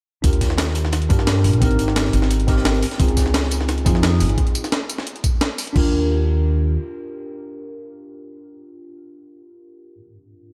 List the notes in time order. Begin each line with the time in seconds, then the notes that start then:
0.22 D#2 D4 F4 G4 A#4, kick, closed hi-hat
0.33 closed hi-hat
0.41 kick, snare, closed hi-hat
0.50 snare
0.58 snare, closed hi-hat
0.68 snare
0.75 closed hi-hat
0.85 snare
0.92 snare, closed hi-hat
1.02 closed hi-hat
1.09 G2 D4 F4 G4 A#4, kick, closed hi-hat
1.19 snare
1.27 snare, closed hi-hat
1.44 A#1, closed hi-hat, open hi-hat
1.53 closed hi-hat
1.60 G#1 C4 D#4 G4 A#4, kick, closed hi-hat
1.71 closed hi-hat
1.79 closed hi-hat
1.88 snare
1.96 snare, closed hi-hat
2.05 snare
2.13 G#1, closed hi-hat
2.22 snare
2.31 closed hi-hat
2.40 closed hi-hat
2.47 C4 D#4 G4 A#4, kick, snare, closed hi-hat
2.57 snare
2.65 snare, closed hi-hat
2.74 closed hi-hat
2.82 closed hi-hat, open hi-hat
2.91 snare, closed hi-hat
2.98 C#2 C4 D#4 F4 G#4, kick, closed hi-hat
3.08 closed hi-hat
3.17 kick, snare, closed hi-hat, tambourine
3.26 snare
3.34 snare, closed hi-hat
3.43 snare
3.51 closed hi-hat, tambourine
3.60 snare
3.68 snare, closed hi-hat
3.78 closed hi-hat
3.85 F2 C4 D#4 F4 G#4, kick, closed hi-hat, tambourine
3.95 snare
4.03 snare, closed hi-hat
4.20 G#1, closed hi-hat, open hi-hat, tambourine
4.29 closed hi-hat
4.38 kick, closed hi-hat
4.47 closed hi-hat
4.55 closed hi-hat, tambourine
4.64 snare, tambourine
4.72 snare, closed hi-hat
4.89 closed hi-hat, tambourine
4.98 snare
5.07 closed hi-hat
5.16 closed hi-hat
5.24 kick, closed hi-hat, tambourine
5.41 snare, closed hi-hat
5.58 open hi-hat, tambourine
5.67 closed hi-hat
5.73 D#2 D4 F4 G4, kick, crash
5.78 A#4